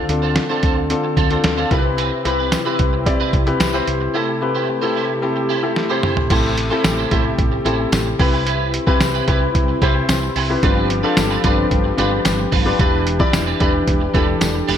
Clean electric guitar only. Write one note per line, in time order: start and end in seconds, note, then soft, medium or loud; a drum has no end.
0.09 muted clean electric guitar stroke soft
0.22 0.35 F4 medium
0.22 0.36 A4 medium
0.22 0.36 C5 medium
0.36 muted clean electric guitar stroke soft
0.49 0.62 F4 medium
0.49 0.63 A4 medium
0.49 0.63 C5 medium
0.63 0.80 F4 medium
0.63 0.76 A4 medium
0.63 0.75 C5 medium
0.76 muted clean electric guitar stroke soft
0.90 muted clean electric guitar stroke soft
1.04 muted clean electric guitar stroke soft
1.17 1.31 F4 medium
1.17 1.30 A4 medium
1.17 1.29 C5 medium
1.30 1.43 F4 soft
1.30 1.43 A4 medium
1.30 1.44 C5 medium
1.44 muted clean electric guitar stroke soft
1.57 1.70 F4 medium
1.57 1.71 A4 medium
1.57 1.72 C5 medium
1.71 1.88 C4 medium
1.71 1.84 E4 medium
1.71 1.83 B4 medium
1.84 muted clean electric guitar stroke soft
1.98 2.19 C4 medium
1.98 2.11 E4 medium
1.98 2.10 B4 loud
2.11 muted clean electric guitar stroke soft
2.25 2.39 C4 medium
2.25 2.38 E4 medium
2.25 2.37 B4 medium
2.38 2.51 C4 soft
2.38 2.51 E4 medium
2.38 2.52 B4 medium
2.52 muted clean electric guitar stroke soft
2.65 2.78 C4 medium
2.65 2.78 E4 medium
2.65 2.79 B4 medium
2.79 muted clean electric guitar stroke soft
2.93 muted clean electric guitar stroke soft
3.06 muted clean electric guitar stroke soft
3.20 3.32 C4 medium
3.20 3.33 E4 medium
3.20 3.33 B4 medium
3.33 muted clean electric guitar stroke soft
3.47 muted clean electric guitar stroke soft
3.60 muted clean electric guitar stroke soft
3.74 3.86 C4 medium
3.74 3.87 E4 medium
3.74 3.87 B4 medium
3.87 muted clean electric guitar stroke soft
4.01 muted clean electric guitar stroke medium
4.14 4.36 E4 medium
4.14 4.28 G4 medium
4.14 4.27 C5 loud
4.28 muted clean electric guitar stroke soft
4.41 muted clean electric guitar stroke soft
4.55 4.67 E4 medium
4.55 4.68 G4 medium
4.55 4.68 C5 medium
4.68 muted clean electric guitar stroke soft
4.82 4.94 E4 medium
4.82 4.95 G4 medium
4.82 4.96 C5 medium
4.95 5.12 E4 medium
4.95 5.09 G4 medium
4.95 5.08 C5 medium
5.09 muted clean electric guitar stroke soft
5.22 muted clean electric guitar stroke soft
5.36 muted clean electric guitar stroke soft
5.49 5.71 E4 medium
5.49 5.63 G4 medium
5.49 5.61 C5 medium
5.63 muted clean electric guitar stroke soft
5.76 muted clean electric guitar stroke soft
5.89 6.02 E4 medium
5.89 6.03 G4 medium
5.89 6.03 C5 medium
6.03 6.20 E4 medium
6.03 6.17 G4 medium
6.03 6.16 C5 medium
6.17 muted clean electric guitar stroke medium
6.30 6.55 E4 medium
6.30 6.56 G4 medium
6.30 6.56 C5 loud
6.57 muted clean electric guitar stroke soft
6.70 6.83 E4 medium
6.70 6.84 G4 medium
6.70 6.84 C5 medium
6.84 muted clean electric guitar stroke soft
6.98 7.10 E4 medium
6.98 7.11 G4 medium
6.98 7.12 C5 medium
7.11 7.33 E4 medium
7.11 7.25 G4 medium
7.11 7.24 C5 loud
7.25 muted clean electric guitar stroke soft
7.52 muted clean electric guitar stroke soft
7.65 7.87 E4 medium
7.65 7.79 G4 medium
7.65 7.78 C5 medium
7.79 muted clean electric guitar stroke soft
7.92 muted clean electric guitar stroke soft
8.06 muted clean electric guitar stroke soft
8.19 8.33 E4 medium
8.19 8.33 G4 medium
8.19 8.32 B4 loud
8.33 8.45 E4 soft
8.33 8.46 G4 medium
8.33 8.47 B4 medium
8.46 8.71 E4 medium
8.46 8.72 G4 medium
8.46 8.72 B4 medium
8.73 muted clean electric guitar stroke soft
8.87 8.99 E4 medium
8.87 9.00 G4 medium
8.87 9.01 B4 medium
9.01 muted clean electric guitar stroke soft
9.14 9.27 E4 medium
9.14 9.27 G4 medium
9.14 9.28 B4 medium
9.28 9.49 E4 medium
9.28 9.41 G4 medium
9.28 9.40 B4 medium
9.41 muted clean electric guitar stroke soft
9.55 muted clean electric guitar stroke soft
9.68 muted clean electric guitar stroke soft
9.82 10.03 E4 medium
9.82 9.95 G4 medium
9.82 9.94 B4 loud
9.95 muted clean electric guitar stroke medium
10.09 muted clean electric guitar stroke soft
10.22 muted clean electric guitar stroke soft
10.36 10.57 E4 medium
10.36 10.49 G4 medium
10.36 10.48 B4 loud
10.49 muted clean electric guitar stroke medium
10.63 10.88 D4 loud
10.63 10.88 F4 medium
10.63 10.88 B4 loud
10.90 muted clean electric guitar stroke soft
11.03 11.16 D4 soft
11.03 11.16 F4 medium
11.03 11.17 B4 medium
11.17 muted clean electric guitar stroke soft
11.30 11.42 D4 medium
11.30 11.43 F4 medium
11.30 11.44 B4 medium
11.44 11.65 D4 medium
11.44 11.57 F4 medium
11.44 11.56 B4 medium
11.58 muted clean electric guitar stroke soft
11.84 muted clean electric guitar stroke soft
11.98 12.19 D4 medium
11.98 12.11 F4 medium
11.98 12.10 B4 medium
12.11 muted clean electric guitar stroke soft
12.25 muted clean electric guitar stroke soft
12.39 muted clean electric guitar stroke soft
12.52 12.66 D4 medium
12.52 12.65 F4 medium
12.52 12.64 B4 medium
12.66 12.77 D4 medium
12.66 12.79 F4 medium
12.66 12.79 B4 medium
12.79 13.04 D4 medium
12.79 13.04 G4 medium
12.79 13.05 B4 loud
13.06 muted clean electric guitar stroke soft
13.20 13.32 D4 soft
13.20 13.32 G4 medium
13.20 13.33 B4 medium
13.33 muted clean electric guitar stroke soft
13.46 13.59 D4 soft
13.46 13.60 G4 medium
13.46 13.60 B4 medium
13.60 13.81 D4 medium
13.60 13.73 G4 medium
13.60 13.72 B4 medium
13.74 muted clean electric guitar stroke soft
14.01 muted clean electric guitar stroke soft
14.14 14.35 D4 medium
14.14 14.28 G4 medium
14.14 14.26 B4 medium
14.28 muted clean electric guitar stroke medium
14.41 muted clean electric guitar stroke soft
14.54 muted clean electric guitar stroke soft
14.68 14.78 D4 medium
14.68 14.78 G4 medium
14.68 14.78 B4 loud